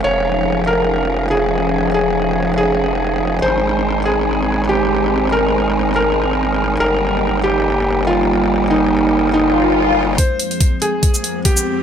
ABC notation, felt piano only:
X:1
M:4/4
L:1/8
Q:"Swing 16ths" 1/4=142
K:Fm
V:1 name="Felt piano"
d3 B3 A2- | A A3 A4 | c3 A3 G2- | G B3 B4 |
B3 G3 F2- | F E3 E4 | c3 A3 G2 |]